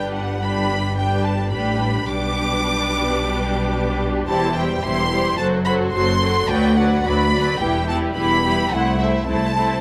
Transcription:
Already playing: double bass section G1, cello section G2, viola section G3 D4, violin section G4 B4 G5
0.15 violin section F#5
0.42 viola section G3 D4, violin section G4 B4 B5
0.97 viola section G3 D4, violin section G4 B4 G5
1.25 violin section A5
1.51 double bass section A1, cello section A2, viola section G3 D4, violin section G4 B4 B5
2.07 double bass section B1, cello section B2, viola section G3 D4, violin section G4 B4 D6
4.28 double bass section E1, cello section E2, viola section G3 E4, violin section G4 C5 A5
4.55 viola section G3 E4, violin section G4 C5 G5
4.82 double bass section E1, cello section E2, viola section G3 E4, violin section G4 C5 C6
5.11 viola section G3 E4, violin section G4 C5
5.37 double bass section F#1, cello section F#2, viola section F#3 F#4, violin section A4 C5 A5
5.65 viola section F#3 F#4, violin section A4 C5 B5
5.92 double bass section F#1, cello section F#2, viola section F#3 F#4, violin section A4 C5 C6
6.21 viola section F#3 F#4, violin section A4 C5
6.49 double bass section D2, cello section D2, viola section F#3 F#4, violin section B4 D5 G5
6.76 viola section F#3 F#4, violin section B4 D5 F#5
7.05 cello section D2, double bass section D2, viola section F#3 F#4, violin section B4 D5 B5
7.33 viola section F#3 F#4, violin section B4 D5
7.60 double bass section E1, cello section E2, viola section G3 E4, violin section G4 B4 G5
7.89 viola section G3 E4, violin section G4 B4 A5
8.16 double bass section E1, cello section E2, viola section G3 E4, violin section G4 B4 B5
8.44 viola section G3 E4, violin section G4 B4
8.71 cello section C2, double bass section C2, viola section A3 E4, violin section E4 C5 F#5
9.00 viola section A3 E4, violin section E4 C5 E5
9.28 cello section C2, double bass section C2, viola section A3 E4, violin section E4 C5 A5
9.57 viola section A3 E4, violin section E4 C5

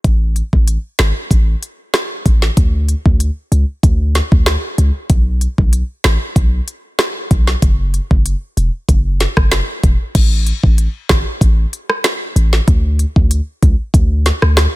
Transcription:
0.04 808-style bass A1, kick, closed hi-hat
0.36 closed hi-hat
0.53 808-style bass A1, kick
0.68 closed hi-hat
0.99 808-style bass G#1, cross-stick, snare, closed hi-hat
1.31 808-style bass A1, kick, closed hi-hat
1.63 closed hi-hat
1.94 cross-stick, snare, closed hi-hat
2.26 808-style bass A1, kick, closed hi-hat
2.42 snare
2.57 808-style bass D2, kick, closed hi-hat
2.89 closed hi-hat
3.06 808-style bass D2, kick
3.20 closed hi-hat
3.52 808-style bass C#2, closed hi-hat
3.83 808-style bass D2, kick, closed hi-hat
4.15 snare, closed hi-hat
4.32 808-style bass D2, kick
4.46 cross-stick, snare, closed hi-hat
4.78 808-style bass C#2, closed hi-hat
5.10 808-style bass B1, kick, closed hi-hat
5.41 closed hi-hat
5.58 808-style bass B1, kick
5.73 closed hi-hat
6.04 808-style bass A1, cross-stick, snare, closed hi-hat
6.36 808-style bass B1, kick, closed hi-hat
6.68 closed hi-hat
6.99 cross-stick, snare, closed hi-hat
7.31 808-style bass B1, kick, closed hi-hat
7.47 snare
7.62 808-style bass F#1, kick, closed hi-hat
7.94 closed hi-hat
8.11 808-style bass F#1, kick
8.26 closed hi-hat
8.57 808-style bass E1, closed hi-hat
8.89 808-style bass F#1, kick, closed hi-hat
9.20 snare, closed hi-hat
9.37 808-style bass F#1, kick, cross-stick
9.52 cross-stick, snare, closed hi-hat
9.84 808-style bass E1, kick, closed hi-hat
10.15 808-style bass A1, kick, closed hi-hat, crash
10.46 closed hi-hat
10.63 808-style bass A1, kick
10.78 closed hi-hat
11.09 808-style bass G#1, kick, cross-stick, snare, closed hi-hat
11.41 808-style bass A1, kick, closed hi-hat
11.73 closed hi-hat
11.90 cross-stick
12.04 cross-stick, snare, closed hi-hat
12.36 808-style bass A1, closed hi-hat
12.53 snare
12.68 808-style bass D2, kick, closed hi-hat
12.99 closed hi-hat
13.16 808-style bass D2, kick
13.31 closed hi-hat
13.62 808-style bass C#2, kick, closed hi-hat
13.94 808-style bass D2, kick, closed hi-hat
14.26 snare, closed hi-hat
14.42 808-style bass D2, cross-stick
14.57 cross-stick, snare, closed hi-hat

